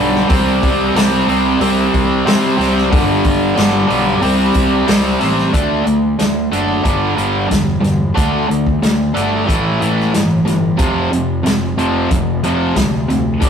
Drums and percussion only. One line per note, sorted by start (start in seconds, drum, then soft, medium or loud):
0.16 snare soft
0.29 kick loud
0.29 open hi-hat medium
0.29 cowbell medium
0.63 kick medium
0.63 open hi-hat medium
0.96 snare loud
0.96 open hi-hat medium
0.96 cowbell medium
1.29 open hi-hat medium
1.61 open hi-hat medium
1.61 cowbell medium
1.94 kick medium
1.94 open hi-hat soft
2.27 snare loud
2.27 open hi-hat medium
2.27 cowbell medium
2.61 snare soft
2.61 open hi-hat medium
2.78 snare soft
2.93 kick loud
2.93 open hi-hat medium
2.93 cowbell medium
3.24 kick medium
3.24 open hi-hat medium
3.57 snare loud
3.57 open hi-hat medium
3.57 cowbell medium
3.90 open hi-hat medium
4.22 open hi-hat medium
4.22 cowbell medium
4.54 kick medium
4.54 open hi-hat medium
4.88 snare loud
4.88 open hi-hat medium
4.88 cowbell medium
5.21 snare soft
5.21 open hi-hat medium
5.38 snare soft
5.54 kick loud
5.54 closed hi-hat medium
5.87 closed hi-hat medium
6.19 snare loud
6.19 closed hi-hat medium
6.53 closed hi-hat medium
6.85 kick medium
6.85 closed hi-hat medium
7.18 closed hi-hat medium
7.51 kick medium
7.51 snare medium
7.51 closed hi-hat medium
7.84 snare soft
7.84 closed hi-hat medium
8.17 kick loud
8.17 closed hi-hat medium
8.51 closed hi-hat medium
8.67 kick medium
8.83 snare loud
8.83 closed hi-hat medium
9.16 closed hi-hat medium
9.49 kick medium
9.49 closed hi-hat medium
9.82 closed hi-hat medium
10.00 snare soft
10.14 snare loud
10.14 closed hi-hat medium
10.47 snare soft
10.47 closed hi-hat medium
10.79 kick loud
10.79 closed hi-hat medium
11.13 closed hi-hat medium
11.46 snare loud
11.46 closed hi-hat medium
11.79 closed hi-hat medium
12.11 kick loud
12.11 closed hi-hat medium
12.44 closed hi-hat medium
12.76 kick medium
12.76 snare loud
12.76 closed hi-hat medium
13.10 snare soft
13.10 closed hi-hat medium
13.42 kick loud
13.42 closed hi-hat medium